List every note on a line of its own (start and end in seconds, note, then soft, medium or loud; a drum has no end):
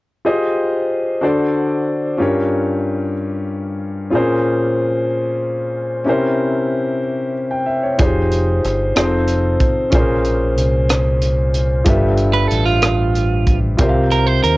0.25 1.22 F4 medium
0.25 1.22 G4 medium
0.25 1.22 G#4 medium
0.25 1.21 C5 soft
0.25 1.22 D#5 medium
1.21 2.15 D3 medium
1.21 2.18 D4 medium
1.21 2.18 F#4 medium
1.21 2.19 A4 medium
1.21 2.19 C5 medium
1.21 2.19 D5 medium
2.17 3.12 G2 medium
2.17 4.08 C#4 medium
2.17 4.08 F4 medium
2.17 4.09 G4 medium
2.17 4.09 A#4 medium
2.22 4.10 C#5 medium
4.11 5.05 A#2 medium
4.11 4.18 C4 soft
4.11 6.01 F4 medium
4.11 6.02 G#4 medium
4.15 6.03 C#4 medium
4.15 6.03 A#4 medium
4.15 6.03 C5 medium
6.04 6.99 C3 medium
6.04 7.94 C#4 medium
6.04 7.95 E4 medium
6.04 7.95 G4 medium
6.04 7.96 A#4 medium
6.09 7.34 C5 medium
7.51 7.66 G5 soft
7.66 7.82 E5 medium
7.83 8.14 C#5 soft
7.98 8.60 F1 medium
7.98 8.95 D#4 medium
7.98 8.95 F4 medium
7.98 8.96 G4 medium
7.98 8.96 G#4 medium
7.98 8.96 C5 medium
7.98 kick medium
7.98 closed hi-hat medium
8.32 closed hi-hat soft
8.65 8.94 G1 medium
8.65 closed hi-hat soft
8.96 9.57 F1 medium
8.96 9.92 C4 medium
8.96 9.92 D#4 medium
8.96 9.90 F4 medium
8.96 9.03 G#4 soft
8.96 9.93 C5 medium
8.96 cross-stick medium
8.96 closed hi-hat medium
9.04 9.96 A4 medium
9.28 closed hi-hat soft
9.60 kick medium
9.60 closed hi-hat soft
9.90 10.58 A#1 medium
9.90 10.85 A#2 medium
9.90 11.81 C#4 medium
9.90 11.82 F4 medium
9.90 11.82 G#4 medium
9.90 11.83 A#4 medium
9.90 kick medium
9.90 closed hi-hat medium
9.95 11.83 C5 medium
10.25 closed hi-hat soft
10.58 11.82 C2 medium
10.58 closed hi-hat soft
10.89 cross-stick medium
10.89 closed hi-hat medium
11.22 closed hi-hat soft
11.54 closed hi-hat soft
11.84 12.46 G1 medium
11.84 12.79 G2 medium
11.84 13.75 F4 medium
11.84 13.75 G4 medium
11.84 13.76 A4 medium
11.84 13.76 B4 medium
11.84 kick medium
11.84 closed hi-hat medium
11.89 13.77 E5 medium
12.17 closed hi-hat soft
12.33 12.48 B4 medium
12.47 13.76 A1 medium
12.47 12.64 A4 medium
12.47 closed hi-hat soft
12.65 13.58 F4 medium
12.82 cross-stick medium
12.82 closed hi-hat medium
13.15 closed hi-hat soft
13.47 kick medium
13.47 closed hi-hat soft
13.77 14.39 C2 medium
13.77 14.57 C3 medium
13.77 14.57 F4 medium
13.77 14.57 G4 medium
13.77 14.57 A#4 medium
13.77 14.57 C5 medium
13.77 kick loud
13.77 closed hi-hat medium
13.82 13.87 E5 medium
13.89 14.57 F5 medium
14.11 14.26 A#4 medium
14.11 closed hi-hat soft
14.26 14.42 C5 medium
14.43 14.57 D#2 medium
14.43 14.57 A#4 medium
14.43 closed hi-hat soft